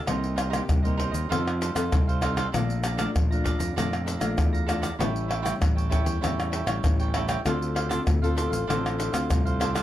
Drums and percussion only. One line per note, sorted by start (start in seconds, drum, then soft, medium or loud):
0.07 pandeiro medium
0.07 tamborim medium
0.07 shaker medium
0.07 surdo medium
0.24 pandeiro soft
0.24 shaker soft
0.38 pandeiro medium
0.38 tamborim medium
0.38 shaker medium
0.53 pandeiro medium
0.53 tamborim medium
0.53 shaker medium
0.69 pandeiro medium
0.69 tamborim medium
0.69 shaker medium
0.69 surdo loud
0.85 pandeiro soft
0.85 shaker soft
1.00 pandeiro medium
1.14 pandeiro medium
1.14 shaker medium
1.32 pandeiro medium
1.32 tamborim medium
1.32 shaker medium
1.32 surdo medium
1.48 pandeiro soft
1.48 tamborim medium
1.48 shaker soft
1.62 pandeiro medium
1.62 shaker medium
1.76 pandeiro medium
1.76 tamborim medium
1.76 shaker medium
1.92 pandeiro medium
1.92 tamborim medium
1.92 shaker medium
1.92 surdo medium
2.09 pandeiro soft
2.09 shaker soft
2.22 pandeiro medium
2.22 tamborim medium
2.22 shaker medium
2.37 pandeiro soft
2.37 tamborim medium
2.37 shaker medium
2.54 pandeiro medium
2.54 tamborim medium
2.54 shaker medium
2.54 surdo medium
2.70 pandeiro soft
2.70 shaker soft
2.84 pandeiro medium
2.84 tamborim medium
2.84 shaker medium
2.99 pandeiro medium
2.99 tamborim medium
2.99 shaker medium
3.16 pandeiro medium
3.16 tamborim medium
3.16 shaker medium
3.16 surdo loud
3.32 pandeiro soft
3.32 shaker soft
3.46 pandeiro medium
3.46 shaker medium
3.46 surdo medium
3.60 pandeiro medium
3.60 shaker medium
3.78 pandeiro medium
3.78 tamborim medium
3.78 shaker medium
3.78 surdo medium
3.93 pandeiro soft
3.93 tamborim medium
3.93 shaker soft
4.08 pandeiro medium
4.08 shaker medium
4.21 pandeiro medium
4.21 tamborim medium
4.21 shaker medium
4.38 pandeiro medium
4.38 tamborim medium
4.38 shaker medium
4.38 surdo medium
4.55 pandeiro soft
4.55 shaker soft
4.69 pandeiro medium
4.69 tamborim medium
4.69 shaker medium
4.83 pandeiro medium
4.83 tamborim medium
4.83 shaker medium
5.00 pandeiro medium
5.00 tamborim medium
5.00 shaker medium
5.00 surdo medium
5.16 pandeiro soft
5.16 shaker soft
5.31 pandeiro medium
5.31 tamborim medium
5.46 pandeiro medium
5.46 tamborim medium
5.46 shaker medium
5.62 pandeiro medium
5.62 tamborim medium
5.62 shaker medium
5.62 surdo loud
5.78 pandeiro soft
5.78 shaker soft
5.92 pandeiro medium
5.92 shaker medium
5.92 surdo medium
6.06 pandeiro medium
6.06 shaker medium
6.24 pandeiro medium
6.24 tamborim medium
6.24 shaker medium
6.24 surdo medium
6.40 pandeiro soft
6.40 tamborim medium
6.40 shaker soft
6.53 pandeiro medium
6.53 shaker medium
6.67 pandeiro medium
6.67 tamborim medium
6.67 shaker medium
6.84 pandeiro medium
6.84 tamborim medium
6.84 shaker medium
6.84 surdo medium
7.00 pandeiro soft
7.00 shaker soft
7.14 pandeiro medium
7.14 tamborim medium
7.29 pandeiro medium
7.29 tamborim medium
7.29 shaker medium
7.46 pandeiro medium
7.46 tamborim medium
7.46 shaker medium
7.46 surdo medium
7.62 pandeiro soft
7.62 shaker soft
7.76 pandeiro medium
7.76 tamborim medium
7.91 pandeiro medium
7.91 tamborim medium
7.91 shaker medium
8.07 pandeiro medium
8.07 tamborim medium
8.07 shaker medium
8.07 surdo loud
8.24 pandeiro soft
8.24 shaker soft
8.38 pandeiro medium
8.38 shaker medium
8.53 pandeiro medium
8.53 shaker medium
8.70 pandeiro medium
8.70 tamborim medium
8.70 shaker medium
8.70 surdo medium
8.86 pandeiro soft
8.86 tamborim medium
8.86 shaker soft
9.00 pandeiro medium
9.00 shaker medium
9.14 pandeiro medium
9.14 tamborim medium
9.14 shaker medium
9.30 pandeiro medium
9.30 tamborim medium
9.30 shaker medium
9.30 surdo medium
9.47 pandeiro soft
9.47 shaker soft
9.61 pandeiro medium
9.61 tamborim medium
9.61 shaker medium
9.75 pandeiro medium
9.75 tamborim medium
9.75 shaker medium